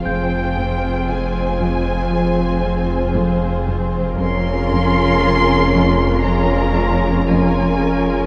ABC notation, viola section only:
X:1
M:4/4
L:1/8
Q:1/4=58
K:Fm
V:1 name="Viola section"
[CF]8 | [DF]4 [DF]2 [DF]2 |]